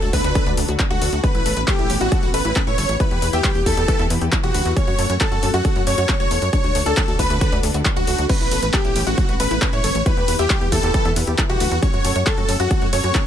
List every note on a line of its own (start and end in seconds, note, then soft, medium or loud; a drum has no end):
0.00 0.10 D2 medium
0.00 1.22 D3 medium
0.00 1.22 D4 medium
0.00 1.20 F#4 medium
0.00 0.09 F#4 loud
0.00 1.22 A4 medium
0.00 closed hi-hat soft
0.13 0.21 D2 loud
0.13 0.20 D4 medium
0.13 0.51 B4 medium
0.13 0.51 B4 loud
0.13 kick medium
0.13 open hi-hat loud
0.24 0.32 D2 loud
0.24 0.31 F#4 medium
0.24 closed hi-hat soft
0.35 0.40 A4 medium
0.35 kick loud
0.35 closed hi-hat soft
0.46 0.54 D2 medium
0.46 0.53 D5 medium
0.46 closed hi-hat soft
0.57 0.65 D2 loud
0.57 0.64 A4 medium
0.57 open hi-hat loud
0.68 0.76 D2 medium
0.68 0.73 F#4 loud
0.68 closed hi-hat soft
0.79 0.90 D4 medium
0.79 kick loud
0.79 clap loud
0.79 closed hi-hat soft
0.90 0.98 D2 medium
0.90 1.18 F#4 loud
0.90 1.01 F#4 loud
0.90 1.19 F#4 loud
0.90 closed hi-hat soft
1.02 1.09 D2 loud
1.02 1.08 A4 medium
1.02 open hi-hat loud
1.13 1.20 D2 medium
1.13 closed hi-hat medium
1.23 2.98 A3 medium
1.23 2.98 B3 medium
1.23 2.98 C#4 medium
1.23 1.28 C#4 medium
1.23 1.61 B4 loud
1.23 kick loud
1.23 closed hi-hat soft
1.35 1.43 A1 medium
1.35 1.42 E4 medium
1.35 closed hi-hat soft
1.46 1.54 A1 loud
1.46 1.53 A4 medium
1.46 open hi-hat loud
1.57 1.65 A1 medium
1.57 1.61 B4 loud
1.57 closed hi-hat medium
1.68 1.96 G4 medium
1.68 1.96 G4 loud
1.68 1.78 A4 medium
1.68 kick loud
1.68 clap loud
1.68 closed hi-hat medium
1.79 1.87 A1 medium
1.79 1.86 E4 loud
1.79 closed hi-hat soft
1.90 1.98 A1 loud
1.90 1.97 C#4 medium
1.90 open hi-hat loud
2.01 2.09 A1 medium
2.01 2.08 E4 medium
2.01 2.29 F#4 medium
2.01 closed hi-hat medium
2.12 2.16 A4 medium
2.12 kick loud
2.12 closed hi-hat medium
2.23 2.31 A1 medium
2.23 2.30 B4 medium
2.23 closed hi-hat soft
2.34 2.42 A1 loud
2.34 2.41 A4 medium
2.34 2.62 B4 medium
2.34 2.62 B4 loud
2.34 open hi-hat loud
2.45 2.53 A1 medium
2.45 2.49 E4 loud
2.45 closed hi-hat medium
2.56 2.66 C#4 medium
2.56 kick loud
2.56 clap loud
2.56 closed hi-hat soft
2.67 2.75 A2 medium
2.67 2.77 E4 loud
2.67 2.95 C#5 loud
2.67 closed hi-hat soft
2.78 2.86 G1 loud
2.78 2.85 A4 medium
2.78 open hi-hat loud
2.89 2.97 A1 loud
2.89 closed hi-hat medium
3.00 4.75 E3 medium
3.00 3.04 E4 medium
3.00 4.75 E4 medium
3.00 4.75 G4 medium
3.00 3.28 B4 medium
3.00 4.75 B4 medium
3.00 3.28 B4 loud
3.00 kick loud
3.00 closed hi-hat medium
3.11 3.19 E2 medium
3.11 3.18 G4 medium
3.11 closed hi-hat soft
3.22 3.30 E2 loud
3.22 3.29 B4 medium
3.22 open hi-hat loud
3.33 3.41 E2 medium
3.33 3.61 G4 loud
3.33 3.37 E5 loud
3.33 closed hi-hat medium
3.44 3.55 B4 medium
3.44 kick loud
3.44 clap loud
3.44 closed hi-hat medium
3.55 3.63 E2 medium
3.55 3.62 G4 loud
3.55 closed hi-hat soft
3.66 3.74 E2 loud
3.66 3.73 E4 medium
3.66 4.03 A4 loud
3.66 4.04 A4 loud
3.66 kick medium
3.66 open hi-hat loud
3.77 3.85 E2 loud
3.77 3.84 G4 medium
3.77 closed hi-hat medium
3.88 3.93 B4 medium
3.88 kick loud
3.88 closed hi-hat medium
3.99 4.07 E2 medium
3.99 4.06 E5 medium
3.99 closed hi-hat soft
4.10 4.18 E2 loud
4.10 4.17 B4 medium
4.10 open hi-hat loud
4.21 4.29 E2 medium
4.21 4.26 G4 loud
4.21 closed hi-hat medium
4.32 4.43 E4 medium
4.32 kick loud
4.32 clap loud
4.32 closed hi-hat medium
4.43 4.51 E1 medium
4.43 4.71 F#4 loud
4.43 4.54 G4 loud
4.43 closed hi-hat soft
4.54 4.62 D2 loud
4.54 4.61 B4 medium
4.54 open hi-hat loud
4.66 4.73 E2 medium
4.66 closed hi-hat medium
4.76 6.51 A3 medium
4.76 4.81 C#4 medium
4.76 6.51 C#4 medium
4.76 6.51 F#4 medium
4.76 5.14 C#5 loud
4.76 kick loud
4.76 closed hi-hat medium
4.88 4.95 F#2 medium
4.88 4.94 F#4 medium
4.88 closed hi-hat soft
4.99 5.07 F#2 loud
4.99 5.06 A4 medium
4.99 open hi-hat loud
5.10 5.18 F#2 medium
5.10 5.14 C#5 loud
5.10 closed hi-hat medium
5.20 5.49 A4 medium
5.20 5.49 A4 loud
5.20 5.31 A4 medium
5.20 kick loud
5.20 clap loud
5.20 closed hi-hat medium
5.32 5.40 F#2 medium
5.32 5.39 F#4 loud
5.32 closed hi-hat soft
5.43 5.51 F#2 loud
5.43 5.50 C#4 medium
5.43 open hi-hat loud
5.54 5.62 F#2 loud
5.54 5.82 F#4 medium
5.54 5.82 F#4 loud
5.54 5.61 F#4 medium
5.54 closed hi-hat medium
5.65 5.69 A4 medium
5.65 kick loud
5.65 closed hi-hat medium
5.76 5.84 F#2 medium
5.76 5.83 C#5 medium
5.76 closed hi-hat soft
5.87 5.95 F#2 loud
5.87 5.94 A4 medium
5.87 6.15 C#5 loud
5.87 open hi-hat loud
5.98 6.06 F#2 medium
5.98 6.02 F#4 loud
5.98 closed hi-hat medium
6.09 6.19 C#4 medium
6.09 kick loud
6.09 clap loud
6.09 closed hi-hat medium
6.20 6.28 F#1 medium
6.20 6.30 F#4 loud
6.20 6.48 C#5 medium
6.20 6.48 C#5 loud
6.20 closed hi-hat soft
6.31 6.39 E2 loud
6.31 6.38 A4 medium
6.31 open hi-hat loud
6.42 6.50 F#2 medium
6.42 closed hi-hat medium
6.53 8.28 D3 medium
6.53 6.57 D4 medium
6.53 8.28 D4 medium
6.53 8.28 F#4 medium
6.53 8.28 A4 medium
6.53 6.81 C#5 medium
6.53 6.81 C#5 loud
6.53 kick loud
6.53 closed hi-hat medium
6.64 6.72 D2 medium
6.64 6.71 F#4 medium
6.64 closed hi-hat soft
6.75 6.83 D2 loud
6.75 6.82 A4 medium
6.75 open hi-hat loud
6.86 6.94 D2 medium
6.86 7.14 A4 loud
6.86 6.90 D5 loud
6.86 closed hi-hat medium
6.97 7.07 A4 medium
6.97 kick loud
6.97 clap loud
6.97 closed hi-hat medium
7.08 7.16 D2 medium
7.08 7.15 F#4 loud
7.08 closed hi-hat soft
7.19 7.27 D2 loud
7.19 7.26 D4 medium
7.19 7.56 B4 medium
7.19 7.57 B4 loud
7.19 kick medium
7.19 open hi-hat loud
7.30 7.38 D2 medium
7.30 7.37 F#4 medium
7.30 closed hi-hat medium
7.41 7.45 A4 medium
7.41 kick loud
7.41 closed hi-hat medium
7.52 7.60 D2 medium
7.52 7.59 D5 medium
7.52 closed hi-hat soft
7.63 7.71 D2 loud
7.63 7.70 A4 medium
7.63 open hi-hat loud
7.74 7.82 D2 medium
7.74 7.79 F#4 loud
7.74 closed hi-hat medium
7.85 7.96 D4 medium
7.85 kick loud
7.85 clap loud
7.85 closed hi-hat medium
7.96 8.04 D2 medium
7.96 8.24 F#4 medium
7.96 8.07 F#4 loud
7.96 8.24 F#4 loud
7.96 closed hi-hat soft
8.07 8.15 D2 loud
8.07 8.14 A4 medium
8.07 open hi-hat loud
8.18 8.26 D2 medium
8.18 closed hi-hat medium
8.29 10.04 A3 medium
8.29 10.04 B3 medium
8.29 10.04 C#4 medium
8.29 8.34 C#4 medium
8.29 8.67 B4 loud
8.29 kick loud
8.29 closed hi-hat medium
8.29 crash medium
8.40 8.48 A1 medium
8.40 8.48 E4 medium
8.40 closed hi-hat soft
8.51 8.59 A1 loud
8.51 8.58 A4 medium
8.51 open hi-hat loud
8.51 ride medium
8.63 8.70 A1 medium
8.63 8.67 B4 loud
8.63 closed hi-hat medium
8.74 9.02 G4 medium
8.74 9.02 G4 loud
8.74 8.84 A4 medium
8.74 kick loud
8.74 clap loud
8.74 closed hi-hat medium
8.85 8.93 A1 medium
8.85 8.92 E4 loud
8.85 closed hi-hat soft
8.96 9.04 A1 loud
8.96 9.03 C#4 medium
8.96 open hi-hat loud
8.96 ride medium
9.07 9.15 A1 medium
9.07 9.14 E4 medium
9.07 9.35 F#4 medium
9.07 9.35 F#4 loud
9.07 closed hi-hat medium
9.18 9.22 A4 medium
9.18 kick loud
9.18 closed hi-hat medium
9.29 9.37 A1 medium
9.29 9.36 B4 medium
9.29 closed hi-hat soft
9.40 9.48 A1 loud
9.40 9.47 A4 medium
9.40 9.68 B4 loud
9.40 open hi-hat loud
9.40 ride medium
9.51 9.59 A1 medium
9.51 9.55 E4 loud
9.51 closed hi-hat medium
9.62 9.72 C#4 medium
9.62 kick loud
9.62 clap loud
9.62 closed hi-hat medium
9.73 9.81 A2 medium
9.73 9.83 E4 loud
9.73 10.01 C#5 loud
9.73 closed hi-hat soft
9.84 9.92 G1 loud
9.84 9.91 A4 medium
9.84 open hi-hat loud
9.84 ride medium
9.95 10.03 A1 loud
9.95 closed hi-hat medium
10.06 11.81 E3 medium
10.06 11.81 E4 medium
10.06 10.10 E4 medium
10.06 11.81 G4 medium
10.06 11.81 B4 medium
10.06 10.34 B4 medium
10.06 10.34 B4 loud
10.06 kick loud
10.06 closed hi-hat medium
10.17 10.25 E2 medium
10.17 10.24 G4 medium
10.17 closed hi-hat soft
10.28 10.36 E2 loud
10.28 10.35 B4 medium
10.28 open hi-hat loud
10.28 ride medium
10.39 10.47 E2 medium
10.39 10.67 G4 loud
10.39 10.43 E5 loud
10.39 closed hi-hat medium
10.50 10.61 B4 medium
10.50 kick loud
10.50 clap loud
10.50 closed hi-hat medium
10.61 10.69 E2 medium
10.61 10.68 G4 loud
10.61 closed hi-hat soft
10.72 10.80 E2 loud
10.72 10.79 E4 medium
10.72 11.10 A4 loud
10.72 kick medium
10.72 open hi-hat loud
10.72 ride medium
10.83 10.91 E2 medium
10.83 10.90 G4 medium
10.83 closed hi-hat medium
10.94 10.98 B4 medium
10.94 kick loud
10.94 closed hi-hat medium
11.05 11.13 E2 medium
11.05 11.12 E5 medium
11.05 closed hi-hat soft
11.16 11.24 E2 loud
11.16 11.23 B4 medium
11.16 open hi-hat loud
11.16 ride medium
11.27 11.35 E2 medium
11.27 11.31 G4 loud
11.27 closed hi-hat medium
11.38 11.49 E4 medium
11.38 kick loud
11.38 clap loud
11.38 closed hi-hat medium
11.49 11.57 E1 medium
11.49 11.77 F#4 loud
11.49 11.60 G4 loud
11.49 closed hi-hat soft
11.60 11.68 D2 loud
11.60 11.67 B4 medium
11.60 open hi-hat loud
11.60 ride medium
11.71 11.79 E2 medium
11.71 closed hi-hat medium
11.82 13.27 A3 medium
11.82 13.27 C#4 medium
11.82 11.87 C#4 medium
11.82 13.27 F#4 medium
11.82 12.20 C#5 loud
11.82 kick loud
11.82 closed hi-hat medium
11.94 12.01 F#2 medium
11.94 12.00 F#4 medium
11.94 closed hi-hat soft
12.05 12.12 F#2 loud
12.05 12.12 A4 medium
12.05 open hi-hat loud
12.05 ride medium
12.16 12.23 F#2 medium
12.16 12.20 C#5 loud
12.16 closed hi-hat medium
12.27 12.55 A4 loud
12.27 12.37 A4 medium
12.27 kick loud
12.27 clap loud
12.27 closed hi-hat medium
12.38 12.46 F#2 medium
12.38 12.45 F#4 loud
12.38 closed hi-hat soft
12.49 12.57 F#2 loud
12.49 12.56 C#4 medium
12.49 open hi-hat loud
12.49 ride medium
12.60 12.68 F#2 medium
12.60 12.88 F#4 loud
12.60 12.88 F#4 medium
12.60 12.67 F#4 medium
12.60 closed hi-hat medium
12.71 12.75 A4 medium
12.71 kick loud
12.71 closed hi-hat medium
12.82 12.90 F#2 medium
12.82 12.89 C#5 medium
12.82 closed hi-hat soft
12.93 13.01 F#2 loud
12.93 13.00 A4 medium
12.93 13.21 C#5 medium
12.93 13.21 C#5 loud
12.93 open hi-hat loud
12.93 ride medium
13.04 13.12 F#2 medium
13.04 13.08 F#4 loud
13.04 closed hi-hat medium
13.15 13.25 C#4 medium
13.15 kick loud
13.15 clap loud
13.15 closed hi-hat medium